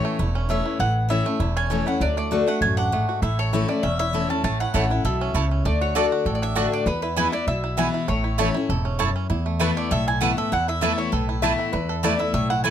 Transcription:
Already playing: A2 E3 A3 C#4 E4 C#5
0.05 A3
0.19 E1 E2 E4
0.35 C#4
0.49 E3 A3 C#4 E4 E5
0.65 E4
0.79 A1 A2 E3 F#5
1.09 E3 A3 C#4 E4 E5
1.26 A3 C#4 E4
1.40 E1 E2 E4
1.57 C#4 G#5
1.70 E3 A3 C#4 E4
1.86 C#4 E4 F#5
2.00 D2 D3 F#3 D5
2.17 A3 D5
2.31 D3 A3 D4 F#4
2.46 A3 D4 F#4 F#5
2.61 A1 F#2 F#4 G#5
2.77 D4 F#5
2.92 G#2 A3
3.09 F#4
3.22 A1 A2 E4 E5
3.39 A4 C#5
3.53 E3 A3 C#4 E4
3.68 A3 C#4 E4 D5
3.83 E1 E2 C#4 E5
3.99 E4 E5
4.13 E3 A3 C#4 E4 A4
4.28 C#4 E4 A5
4.44 A1 A2 A3 A5
4.60 E4 F#5
4.74 A1 E3 A3 C#4 E4 A4 C#5 A5
4.90 C#4 E4
5.04 B1 B2 A4 E5
5.21 C#4
5.34 C#2 C#3 A3 E4 C#5 A5
5.51 C#4
5.65 D2 D3 A3 D5
5.81 F#4 C#5
5.95 D3 A3 D4 F#4 A4 D5 A5
6.12 F#4
6.25 A1 A2 A4
6.35 D5
6.42 D4 E5
6.55 D3 A3 D4 F#4 D5 A5
6.72 D4 D5
6.86 E2 B3 B4
7.02 E4 B4
7.16 E3 G#3 B3 E4 B4 G#5
7.32 B3 E4 D5
7.47 B1 B2 E4 E5
7.64 E4
7.77 E3 G#3 B3 E4 B4 G#5
7.94 E4
8.08 A1 A2 A3 C#5
8.24 E4
8.38 E3 A3 C#4 E4 A4 C#5 A5
8.54 C#4 E4
8.69 E1 G#2 A4
8.85 C#4
8.99 F#2 A3 E4 C#5 A5
9.16 C#4
9.30 E2 E4
9.46 A3
9.59 E3 A3 B3 E4 B4 A5
9.77 A3 D5
9.91 B1 A2 A4 E5
10.08 E4 G#5
10.21 E3 A3 B3 E4 B4 F#5 A5
10.37 B3 E4 A4 E5
10.52 E2 E4 F#5
10.68 E4 E5
10.81 E3 A3 B3 E4 B4 E5 A5
10.98 E4 C#5
11.12 B1 A2 A4 B4
11.29 E4
11.42 E3 A3 B3 E4 B4 E5 A5
11.59 E4
11.72 E2 E4 B4
11.89 A4
12.03 E3 A3 B3 E4 B4 D5 A5
12.19 B3 E4 E5
12.33 B1 A2 A3 E5
12.50 E4 F#5
12.64 E3 A3 B3 E4 B4 G#5 A5

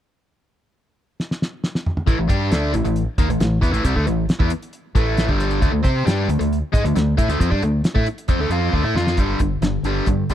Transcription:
1.20 snare
1.31 snare
1.42 snare
1.64 snare
1.75 snare
1.86 mid tom
1.97 mid tom
2.07 A1 A2 E3, kick, closed hi-hat
2.18 A1 A2 E3
2.29 G2 G3 D4 G4, kick, closed hi-hat
2.51 D2 D3 A3 D4, snare, closed hi-hat
2.74 A1 A2 E3, closed hi-hat
2.85 A1 A2 E3, closed hi-hat
2.96 closed hi-hat
3.18 D#2 D#3 A#3, kick, closed hi-hat
3.28 A1 A2 E3, closed hi-hat
3.39 A1 A2 E3, snare, closed hi-hat
3.61 E2 E3 B3, kick, snare, closed hi-hat
3.72 A1 A2 E3, closed hi-hat
3.84 C2 C3 G3, kick, closed hi-hat
3.96 D2 D3 A3, kick
4.07 A1 A2 E3, closed hi-hat
4.29 snare, closed hi-hat
4.40 E2 E3 B3, kick
4.50 closed hi-hat
4.62 closed hi-hat
4.73 closed hi-hat
4.95 A1 A2 E3 A3, kick, closed hi-hat
5.17 snare, closed hi-hat
5.28 G1 G2 D3 G3, kick
5.40 snare, closed hi-hat
5.51 closed hi-hat
5.61 D2 D3 A3, kick, closed hi-hat
5.72 D2 D3 A3
5.84 C3 C4 G4 C5, kick, closed hi-hat
6.06 G2 G3 D4 G4, snare, closed hi-hat
6.28 D2 D3 A3, closed hi-hat
6.39 D2 D3 A3, closed hi-hat
6.53 closed hi-hat
6.72 G#2 G#3 D#4, kick, closed hi-hat
6.84 D2 D3 A3, closed hi-hat
6.95 D2 D3 A3, snare, closed hi-hat
7.17 A2 A3 E4, kick, closed hi-hat
7.29 D2 D3 A3, closed hi-hat
7.40 F2 F3 C4, kick, closed hi-hat
7.51 G2 G3 D4, kick
7.62 D2 D3 A3, closed hi-hat
7.84 snare, closed hi-hat
7.95 A2 A3 E4, kick
8.06 closed hi-hat
8.18 closed hi-hat
8.28 F2 F3 C4, kick, closed hi-hat
8.39 D2 D3 A3
8.50 F2 F3 C4 F4, closed hi-hat
8.73 D2 D3 A3, kick
8.83 A2 A3 E4
8.94 F2 F3 C4 F4, snare
9.07 snare
9.17 G1 G2 D3 G3, kick, closed hi-hat
9.39 G1 G2 D3, kick, closed hi-hat
9.61 G1 G2 D3, snare, closed hi-hat
9.83 G1 G2 D3 G3, closed hi-hat
10.06 G2 D3, kick, closed hi-hat
10.30 G1 G2 D3, kick, closed hi-hat

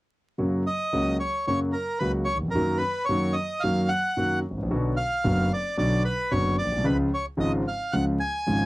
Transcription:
0.38 F#2 C#3 F#3 A#3 F#4
0.67 D#5
0.93 C#2 C#3 F#3 A#3 F#4
1.20 C#5
1.47 F#2 C#3 F#3 A#3 F#4 C#5
1.73 A#4
1.99 C#2 C#3 F#3 A#3 F#4 B4
2.25 C#5
2.35 D#2
2.41 E2
2.48 F2 A#4
2.55 F#2 D#3 F#3 A#3 F#4
2.78 B4
3.05 A#3 C#5
3.09 F#2 D#3 F#3 F#4
3.33 D#5
3.60 F#2 D#3 F#3 A#3 F#4 F5
3.88 F#5
4.17 F#2 D#3 F#3 A#3 F#4
4.50 G#1
4.57 A1
4.63 A#1
4.70 B1 B2 D3 F#3 B3 F#4
4.97 F5
5.24 F#1 F#2 D3 F#3 B3 F#4
5.53 D5
5.77 B1 B2 D3 F#3 B3 F#4 D5
6.05 B4
6.31 F#1 F#2 D3 F#3 B3 F#4 C#5
6.58 D5
6.64 A#1
6.72 B1
6.77 C2
6.84 C#2 C#3 F3 G#3 F4 B4
7.14 C#5
7.37 G#1 G#2 C#3 F3 G#3 F4 D#5
7.68 F5
7.92 C#2 C#3 F3 G#3 F4 F#5
8.20 G#5
8.47 G#1 G#2 C#3 F3 G#3 F4

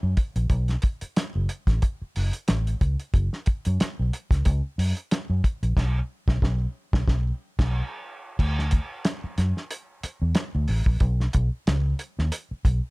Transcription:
0.03 F#2
0.17 kick, closed hi-hat
0.36 A#1, closed hi-hat
0.50 B1, kick, closed hi-hat
0.68 snare, closed hi-hat
0.82 kick, closed hi-hat
1.01 muted fingered electric bass stroke, closed hi-hat
1.16 snare, closed hi-hat
1.35 F#1
1.49 closed hi-hat
1.67 A1, kick, snare, closed hi-hat
1.82 kick, closed hi-hat
2.02 muted fingered electric bass stroke
2.16 F#1, open hi-hat
2.33 closed hi-hat
2.48 A1, snare, closed hi-hat
2.67 closed hi-hat
2.81 C#2, kick, closed hi-hat
3.00 closed hi-hat
3.14 F#1, kick, closed hi-hat
3.33 snare
3.46 muted fingered electric bass stroke, kick, closed hi-hat
3.65 F#2, closed hi-hat
3.80 muted fingered electric bass stroke, snare, closed hi-hat
3.99 B1
4.13 closed hi-hat
4.31 C#2, kick, snare, closed hi-hat
4.45 C#2, kick, closed hi-hat
4.78 F#2, open hi-hat
4.97 closed hi-hat
5.11 snare, closed hi-hat
5.30 F#2
5.44 kick, closed hi-hat
5.63 A#1, closed hi-hat
5.77 B1, kick, snare, crash
6.28 B1, kick, snare
6.42 B1, kick, snare
6.93 B1, kick, snare
7.08 B1, kick, snare
7.59 B1, kick, snare, crash
8.39 D2, kick, crash
8.59 snare
8.71 kick, closed hi-hat
9.05 snare, closed hi-hat
9.24 muted fingered electric bass stroke
9.38 F#2, snare, closed hi-hat
9.57 snare
9.71 closed hi-hat
10.03 muted fingered electric bass stroke, closed hi-hat
10.22 E2
10.35 snare, closed hi-hat
10.55 D2
10.68 A1, open hi-hat
10.86 A#1, kick
11.00 B1, kick, closed hi-hat
11.20 snare
11.33 B1, kick, closed hi-hat
11.67 C#2, snare, closed hi-hat
11.99 closed hi-hat
12.19 D#2, snare
12.32 closed hi-hat
12.51 muted fingered electric bass stroke
12.65 B1, kick, closed hi-hat

